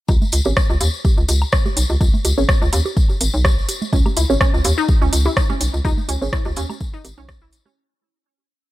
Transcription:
0.08 C#2, kick, tambourine, high conga, high woodblock
0.22 tambourine, low conga
0.32 C#2, open hi-hat, tambourine
0.45 G#1 C#4 G#4 C#5, tambourine, high conga
0.56 kick, cross-stick, tambourine
0.70 C#2, tambourine, high conga
0.81 D#2, open hi-hat, tambourine
0.94 tambourine
1.05 kick, tambourine, high conga
1.18 C#2, tambourine
1.28 C#2, open hi-hat, tambourine, high conga
1.42 high woodblock
1.52 kick, cross-stick, tambourine
1.66 tambourine, high conga, low conga
1.77 B1, open hi-hat, tambourine
1.90 C#2, tambourine, high conga
2.01 C#2, kick, tambourine
2.14 tambourine, low conga
2.25 C#2, open hi-hat, tambourine, high conga
2.38 G#1 C#4 G#4 C#5, tambourine
2.49 kick, cross-stick, tambourine, high conga
2.62 C#2, tambourine
2.73 D#2, open hi-hat, tambourine, high woodblock
2.86 tambourine, high conga
2.97 kick, tambourine
3.09 tambourine, high conga
3.21 G#1, open hi-hat, tambourine
3.34 B1, tambourine
3.45 kick, cross-stick, tambourine, high conga
3.58 G#1, tambourine
3.69 open hi-hat, tambourine, high conga
3.82 tambourine, low conga
3.93 C#2 C#4, kick, tambourine
4.06 tambourine, high conga, low conga, high woodblock
4.17 C#2 E4, open hi-hat, tambourine
4.30 G#1 C#4 G#4 C#5, tambourine, high conga
4.41 C#4, kick, cross-stick, tambourine
4.54 C#2, tambourine
4.64 D#2, open hi-hat, tambourine, high conga
4.78 D#4, tambourine
4.88 kick, tambourine, high conga
5.02 C#2 C#4, tambourine
5.13 C#2, open hi-hat, tambourine
5.25 E4, tambourine, high conga
5.37 kick, cross-stick, tambourine, high woodblock
5.50 C#4, tambourine, high conga, low conga
5.61 B1, open hi-hat, tambourine
5.74 C#2, tambourine
5.85 C#2 D#4, kick, tambourine, high conga
5.98 tambourine, low conga
6.09 C#2 C#4, open hi-hat, tambourine, high conga
6.22 G#1 C#4 G#4 C#5, tambourine
6.33 E4, kick, cross-stick, tambourine
6.45 C#2, tambourine, high conga
6.56 D#2 C#4, open hi-hat, tambourine
6.70 tambourine, high conga, low conga, high woodblock
6.80 kick, tambourine
6.94 D#4, tambourine
7.05 G#1, open hi-hat, tambourine, high conga
7.17 B1 C#4, tambourine
7.29 kick, cross-stick, tambourine, high conga
7.41 E4, tambourine
7.53 G#1, open hi-hat, tambourine
7.66 C#4, high conga, low conga

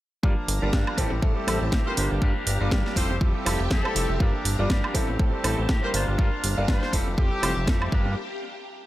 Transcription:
0.23 G2 F3 G3 A#3 D4 F4 G4 A#4 F5 A#5, kick
0.48 G1, open hi-hat
0.62 G1 G3 A#3 D4 F4 D5
0.73 G2 F3 A#3 D4, kick, snare
0.87 high woodblock
0.97 A1 E3 G3 A3 C4 E4 G4 A4 C5 A5, kick, open hi-hat
1.12 A1 A3 C4 G4
1.22 A2 G3 A3 C4 E4 A4, kick
1.36 A3 C4 G4
1.47 A1 E3 G3 A3 C4 E4 G4 A4, open hi-hat, high woodblock
1.62 A1
1.72 A2 E3 A3 C4 G4, kick, snare
1.86 G3 A#3 D4 F4 A#4 C5
1.97 G1 F3 A#3 D4 G4 C5 F5 A#5, open hi-hat
2.11 G1 A#3 D4 G4
2.22 G2 F3 G3 A#3 D4 F4 G4 A#4, kick
2.47 G1, open hi-hat
2.60 G1 G3 A#3 D4 F4 D5
2.71 G2 F3 A#3 D4 G4, kick, snare
2.86 snare
2.96 F1 E3 G3 A3 C4 E4 F4 G4 A4 C5 E5 A5, kick, open hi-hat
3.10 F1 A3 C4 G4
3.21 F2 G3 C4 E4 F4 A4, kick
3.35 A3 C4 G4
3.46 F1 E3 G3 A3 C4 E4 F4 G4 A4, open hi-hat, high woodblock
3.60 F1 A3 C4 G4
3.71 F2 E3 A3 C4 G4 A4, kick, snare
3.84 G3 C4 E4 A4, high woodblock
3.95 F1 E3 A3 C4 G4, open hi-hat
4.09 F1 A3 C4 G4
4.20 G2 F3 G3 A#3 D4 F4 G4 A#4 F5 A#5, kick
4.45 G1, open hi-hat
4.59 G1 G3 A#3 D4 F4 D5
4.70 G2 F3 A#3 D4 G4, kick, snare
4.84 high woodblock
4.94 A1 E3 G3 A3 C4 E4 G4 A4 C5 A5, kick, open hi-hat
5.09 A1
5.19 A2 G3 A3 C4 E4 A4, kick
5.33 A3 C4 G4
5.43 A1 E3 G3 A3 C4 E4 G4 A4, open hi-hat, high woodblock
5.58 A1
5.69 A2 E3 A3 C4 G4, kick, snare
5.83 G3 A#3 D4 F4 A#4 C5
5.94 G1 A#3 D4 F4 C5 F5 A#5, open hi-hat
6.08 G1 D4 F4
6.18 G2 G3 A#3 D4 F4 A#4, kick
6.44 G1, open hi-hat
6.57 G1 G3 A#3 D4 F4 D5
6.68 G2 A#3 D4 F4 C5, kick, snare
6.83 snare
6.93 F1 E3 G3 A3 C4 E4 F4 G4 A4 E5 A5, kick, open hi-hat
7.07 F1
7.17 F2 G3 C4 E4 F4 G4 A4, kick
7.32 A3 C4 G4
7.42 F1 E3 G3 A3 C4 E4 F4 G4 C5, open hi-hat, high woodblock
7.56 F1 A3 C4 G4
7.67 F2 E3 G3 A3 C4 E4 G4 A4, kick, snare
7.82 high woodblock
7.91 G2 F3 G3 A#3 D4 F4 G4 A#4 F5 A#5, kick

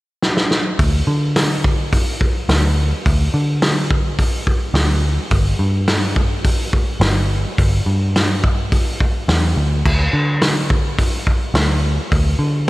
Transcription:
0.23 snare
0.37 snare
0.51 snare
0.79 D2, kick, open hi-hat
1.07 D3
1.36 snare, open hi-hat
1.64 kick
1.93 kick, open hi-hat
2.21 kick
2.49 D2, snare, open hi-hat
3.06 D2, kick, open hi-hat
3.34 D3
3.62 snare, open hi-hat
3.91 kick
4.19 kick, open hi-hat
4.47 kick
4.74 D2, snare, open hi-hat
5.31 G1, kick, open hi-hat
5.59 G2
5.88 snare, open hi-hat
6.16 kick
6.45 kick, open hi-hat
6.73 kick
7.00 G1, snare, open hi-hat
7.58 G1, kick, open hi-hat
7.86 G2
8.16 snare, open hi-hat
8.44 kick
8.72 kick, open hi-hat
9.00 kick
9.28 E2, snare, open hi-hat
9.56 D2
9.85 D2, kick, crash
10.13 D3
10.42 snare, open hi-hat
10.70 kick
10.99 kick, open hi-hat
11.27 kick
11.54 D2, snare, open hi-hat
12.12 D2, kick, open hi-hat
12.39 D3

